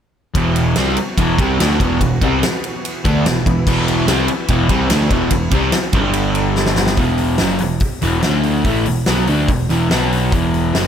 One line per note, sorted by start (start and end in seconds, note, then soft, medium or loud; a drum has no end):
0.33 0.74 E1 medium
0.33 0.75 E2 medium
0.33 0.76 B2 loud
0.33 5.90 E3 medium
0.33 0.76 E3 medium
0.33 5.90 B3 medium
0.33 2.81 F#4 loud
0.33 kick loud
0.33 ride loud
0.56 ride medium
0.76 0.96 C2 medium
0.76 0.97 C3 medium
0.76 0.97 G3 medium
0.76 0.97 C4 loud
0.76 snare loud
0.76 ride loud
0.97 muted overdriven electric guitar stroke medium
0.97 muted picked electric bass stroke soft
0.97 ride medium
1.18 1.37 E1 loud
1.18 1.38 E2 medium
1.18 1.37 B2 loud
1.18 1.38 E3 loud
1.18 kick loud
1.18 ride loud
1.37 1.58 C2 loud
1.37 1.58 C3 medium
1.37 1.59 G3 medium
1.37 1.59 C4 loud
1.37 kick loud
1.37 ride medium
1.59 1.80 D2 medium
1.59 1.79 D3 medium
1.59 1.80 A3 loud
1.59 1.80 D4 loud
1.59 snare loud
1.59 ride loud
1.79 2.00 E1 medium
1.79 2.00 E2 medium
1.79 2.00 B2 medium
1.79 2.00 E3 loud
1.79 kick loud
1.79 ride medium
2.01 2.21 E1 medium
2.01 2.18 E2 medium
2.01 2.18 B2 medium
2.01 kick medium
2.01 ride medium
2.21 2.41 C2 medium
2.21 2.42 C3 medium
2.21 2.42 G3 medium
2.21 2.43 C4 medium
2.21 kick loud
2.21 ride medium
2.43 snare loud
2.43 ride medium
2.64 ride medium
2.84 5.92 E4 medium
2.84 ride medium
3.04 3.24 D2 loud
3.04 3.25 D3 medium
3.04 3.25 A3 loud
3.04 3.25 D4 loud
3.04 kick loud
3.04 ride medium
3.26 3.45 E1 medium
3.26 3.42 E2 medium
3.26 3.43 B2 medium
3.26 snare loud
3.26 ride medium
3.46 3.66 E1 medium
3.46 3.63 E2 medium
3.46 3.63 B2 medium
3.46 kick loud
3.46 ride medium
3.67 4.06 E1 loud
3.67 4.08 E2 loud
3.67 4.07 B2 loud
3.67 4.07 E3 loud
3.67 kick loud
3.67 crash loud
3.88 ride medium
4.07 4.27 C2 medium
4.07 4.28 C3 medium
4.07 4.28 G3 loud
4.07 4.28 C4 loud
4.07 snare loud
4.07 ride medium
4.28 muted overdriven electric guitar stroke medium
4.28 muted picked electric bass stroke soft
4.28 ride medium
4.48 4.69 E1 loud
4.48 4.70 E2 medium
4.48 4.69 B2 loud
4.48 4.69 E3 loud
4.48 kick loud
4.48 ride medium
4.69 4.90 C2 medium
4.69 4.89 C3 medium
4.69 4.90 G3 medium
4.69 4.90 C4 medium
4.69 kick loud
4.69 ride medium
4.89 5.10 D2 medium
4.89 5.10 D3 loud
4.89 5.11 A3 loud
4.89 5.11 D4 loud
4.89 snare loud
4.89 ride loud
5.11 5.31 E1 medium
5.11 5.31 E2 medium
5.11 5.32 B2 medium
5.11 5.32 E3 loud
5.11 kick loud
5.11 ride medium
5.30 5.51 E1 medium
5.30 5.49 E2 medium
5.30 5.50 B2 medium
5.30 kick medium
5.30 ride loud
5.51 5.72 C2 medium
5.51 5.73 C3 medium
5.51 5.74 G3 medium
5.51 5.74 C4 medium
5.51 kick loud
5.51 ride medium
5.72 snare loud
5.72 ride medium
5.93 6.95 G1 loud
5.93 6.98 G2 medium
5.93 6.99 D3 loud
5.93 6.97 G3 medium
5.93 6.99 G3 loud
5.93 6.98 D4 medium
5.93 6.97 A4 medium
5.93 kick loud
5.93 ride medium
6.13 ride medium
6.35 ride medium
6.56 snare medium
6.66 snare medium
6.76 snare loud
6.87 snare medium
6.97 7.37 E1 medium
6.97 7.39 E2 medium
6.97 7.40 B2 loud
6.97 7.40 E3 medium
6.97 kick loud
6.97 open hi-hat medium
7.18 open hi-hat medium
7.38 7.60 F#1 loud
7.38 7.60 F#2 medium
7.38 7.61 C#3 medium
7.38 7.61 F#3 medium
7.38 snare loud
7.38 open hi-hat medium
7.59 7.81 E1 medium
7.59 7.78 E2 medium
7.59 7.78 B2 medium
7.59 open hi-hat medium
7.80 kick loud
7.80 open hi-hat medium
8.02 8.23 E1 loud
8.02 8.23 E2 medium
8.02 8.23 B2 medium
8.02 8.24 E3 loud
8.02 open hi-hat medium
8.22 8.63 D2 medium
8.22 8.64 D3 medium
8.22 8.65 A3 medium
8.22 8.65 D4 medium
8.22 snare loud
8.22 open hi-hat medium
8.43 open hi-hat medium
8.64 8.85 A1 loud
8.64 8.86 A2 loud
8.64 8.86 E3 medium
8.64 8.87 A3 loud
8.64 kick loud
8.64 open hi-hat medium
8.86 9.06 E1 medium
8.86 9.03 E2 medium
8.86 9.03 B2 medium
8.86 open hi-hat medium
9.06 9.27 B1 medium
9.06 9.27 B2 medium
9.06 9.28 F#3 medium
9.06 9.28 B3 medium
9.06 snare loud
9.06 open hi-hat medium
9.27 9.48 D2 loud
9.27 9.48 D3 medium
9.27 9.48 A3 loud
9.27 9.49 D4 loud
9.27 open hi-hat medium
9.48 9.68 E1 medium
9.48 9.66 E2 medium
9.48 9.66 B2 medium
9.48 kick loud
9.48 open hi-hat medium
9.70 9.90 E1 loud
9.70 9.90 E2 medium
9.70 9.88 B2 medium
9.70 9.90 E3 loud
9.70 open hi-hat medium
9.89 10.30 B1 medium
9.89 10.31 B2 medium
9.89 10.32 F#3 medium
9.89 10.32 B3 medium
9.89 snare loud
9.89 open hi-hat medium
10.12 open hi-hat medium
10.32 10.72 E1 medium
10.32 10.73 E2 medium
10.32 10.74 B2 medium
10.32 10.74 E3 loud
10.32 kick loud
10.32 open hi-hat medium
10.54 open hi-hat soft
10.75 10.87 F#1 medium
10.75 10.87 F#2 medium
10.75 10.87 C#3 medium
10.75 10.87 F#3 medium
10.75 snare loud
10.75 open hi-hat medium